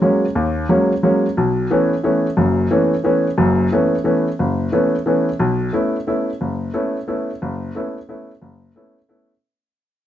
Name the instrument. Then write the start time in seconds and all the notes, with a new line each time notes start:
grand piano
0.02 F#3 G#3 A#3 C#4
0.35 D#2
0.69 F#3 G#3 A#3 C#4
1.03 F#3 G#3 A#3 C#4
1.37 B1
1.71 E3 A3 B3 C#4
2.04 E3 A3 B3 C#4
2.37 F#1 F#2
2.71 E3 A3 B3 C#4
3.04 E3 A3 B3 C#4
3.38 F#1 F#2
3.72 E3 A3 B3 C#4
4.04 E3 A3 B3 C#4
4.39 F#1
4.72 E3 A3 B3 C#4
5.06 E3 A3 B3 C#4
5.39 B1
5.73 A3 B3 C#4 E4
6.07 A3 B3 C#4 E4
6.41 F#1
6.74 A3 B3 C#4 E4
7.08 A3 B3 C#4 E4
7.42 F#1
7.75 A3 B3 C#4 E4
8.09 A3 B3 C#4 E4
8.42 F#1
8.76 A3 B3 C#4 E4
9.09 A3 B3 C#4 E4